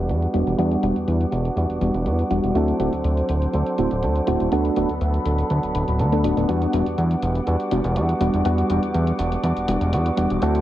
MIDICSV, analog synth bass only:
0, 0, Header, 1, 2, 480
1, 0, Start_track
1, 0, Key_signature, 1, "minor"
1, 0, Tempo, 491803
1, 571, Time_signature, 4, 2, 24, 8
1, 10356, End_track
2, 0, Start_track
2, 0, Title_t, "Analog synth bass"
2, 0, Program_c, 0, 38
2, 0, Note_on_c, 0, 28, 95
2, 90, Note_on_c, 0, 40, 85
2, 105, Note_off_c, 0, 28, 0
2, 263, Note_off_c, 0, 40, 0
2, 334, Note_on_c, 0, 28, 91
2, 421, Note_off_c, 0, 28, 0
2, 458, Note_on_c, 0, 28, 85
2, 537, Note_off_c, 0, 28, 0
2, 570, Note_on_c, 0, 40, 92
2, 743, Note_off_c, 0, 40, 0
2, 810, Note_on_c, 0, 28, 85
2, 899, Note_off_c, 0, 28, 0
2, 938, Note_on_c, 0, 40, 41
2, 1029, Note_off_c, 0, 40, 0
2, 1050, Note_on_c, 0, 40, 95
2, 1223, Note_off_c, 0, 40, 0
2, 1289, Note_on_c, 0, 28, 87
2, 1463, Note_off_c, 0, 28, 0
2, 1528, Note_on_c, 0, 40, 80
2, 1619, Note_off_c, 0, 40, 0
2, 1654, Note_on_c, 0, 28, 40
2, 1746, Note_off_c, 0, 28, 0
2, 1769, Note_on_c, 0, 28, 92
2, 1859, Note_off_c, 0, 28, 0
2, 1894, Note_on_c, 0, 28, 95
2, 2007, Note_on_c, 0, 40, 83
2, 2022, Note_off_c, 0, 28, 0
2, 2182, Note_off_c, 0, 40, 0
2, 2250, Note_on_c, 0, 28, 89
2, 2339, Note_off_c, 0, 28, 0
2, 2377, Note_on_c, 0, 28, 86
2, 2457, Note_off_c, 0, 28, 0
2, 2487, Note_on_c, 0, 38, 96
2, 2662, Note_off_c, 0, 38, 0
2, 2729, Note_on_c, 0, 26, 86
2, 2819, Note_off_c, 0, 26, 0
2, 2858, Note_on_c, 0, 38, 40
2, 2948, Note_off_c, 0, 38, 0
2, 2969, Note_on_c, 0, 38, 91
2, 3143, Note_off_c, 0, 38, 0
2, 3213, Note_on_c, 0, 26, 83
2, 3385, Note_off_c, 0, 26, 0
2, 3455, Note_on_c, 0, 38, 80
2, 3542, Note_off_c, 0, 38, 0
2, 3694, Note_on_c, 0, 26, 93
2, 3781, Note_off_c, 0, 26, 0
2, 3823, Note_on_c, 0, 26, 92
2, 3936, Note_on_c, 0, 38, 88
2, 3951, Note_off_c, 0, 26, 0
2, 4106, Note_off_c, 0, 38, 0
2, 4176, Note_on_c, 0, 26, 88
2, 4262, Note_off_c, 0, 26, 0
2, 4302, Note_on_c, 0, 26, 88
2, 4379, Note_off_c, 0, 26, 0
2, 4413, Note_on_c, 0, 38, 95
2, 4585, Note_off_c, 0, 38, 0
2, 4652, Note_on_c, 0, 26, 89
2, 4741, Note_off_c, 0, 26, 0
2, 4779, Note_on_c, 0, 38, 41
2, 4869, Note_off_c, 0, 38, 0
2, 4889, Note_on_c, 0, 38, 93
2, 5063, Note_off_c, 0, 38, 0
2, 5130, Note_on_c, 0, 26, 84
2, 5303, Note_off_c, 0, 26, 0
2, 5373, Note_on_c, 0, 38, 81
2, 5461, Note_off_c, 0, 38, 0
2, 5500, Note_on_c, 0, 26, 41
2, 5589, Note_off_c, 0, 26, 0
2, 5612, Note_on_c, 0, 26, 92
2, 5700, Note_off_c, 0, 26, 0
2, 5738, Note_on_c, 0, 26, 77
2, 5852, Note_on_c, 0, 38, 94
2, 5867, Note_off_c, 0, 26, 0
2, 6092, Note_on_c, 0, 26, 81
2, 6106, Note_off_c, 0, 38, 0
2, 6180, Note_off_c, 0, 26, 0
2, 6218, Note_on_c, 0, 26, 76
2, 6298, Note_off_c, 0, 26, 0
2, 6332, Note_on_c, 0, 40, 93
2, 6504, Note_off_c, 0, 40, 0
2, 6571, Note_on_c, 0, 28, 89
2, 6660, Note_off_c, 0, 28, 0
2, 6699, Note_on_c, 0, 40, 41
2, 6789, Note_off_c, 0, 40, 0
2, 6812, Note_on_c, 0, 40, 94
2, 6984, Note_off_c, 0, 40, 0
2, 7051, Note_on_c, 0, 28, 87
2, 7224, Note_off_c, 0, 28, 0
2, 7293, Note_on_c, 0, 40, 83
2, 7381, Note_off_c, 0, 40, 0
2, 7530, Note_on_c, 0, 28, 94
2, 7619, Note_off_c, 0, 28, 0
2, 7656, Note_on_c, 0, 28, 100
2, 7770, Note_on_c, 0, 40, 84
2, 7785, Note_off_c, 0, 28, 0
2, 7943, Note_off_c, 0, 40, 0
2, 8012, Note_on_c, 0, 28, 91
2, 8100, Note_off_c, 0, 28, 0
2, 8139, Note_on_c, 0, 28, 84
2, 8218, Note_off_c, 0, 28, 0
2, 8250, Note_on_c, 0, 40, 93
2, 8423, Note_off_c, 0, 40, 0
2, 8490, Note_on_c, 0, 28, 89
2, 8580, Note_off_c, 0, 28, 0
2, 8619, Note_on_c, 0, 40, 42
2, 8709, Note_off_c, 0, 40, 0
2, 8729, Note_on_c, 0, 40, 91
2, 8903, Note_off_c, 0, 40, 0
2, 8970, Note_on_c, 0, 28, 85
2, 9143, Note_off_c, 0, 28, 0
2, 9207, Note_on_c, 0, 40, 80
2, 9298, Note_off_c, 0, 40, 0
2, 9334, Note_on_c, 0, 28, 41
2, 9426, Note_off_c, 0, 28, 0
2, 9447, Note_on_c, 0, 28, 93
2, 9538, Note_off_c, 0, 28, 0
2, 9575, Note_on_c, 0, 28, 93
2, 9691, Note_on_c, 0, 40, 87
2, 9705, Note_off_c, 0, 28, 0
2, 9864, Note_off_c, 0, 40, 0
2, 9931, Note_on_c, 0, 28, 91
2, 10020, Note_off_c, 0, 28, 0
2, 10060, Note_on_c, 0, 28, 84
2, 10138, Note_off_c, 0, 28, 0
2, 10170, Note_on_c, 0, 38, 96
2, 10343, Note_off_c, 0, 38, 0
2, 10356, End_track
0, 0, End_of_file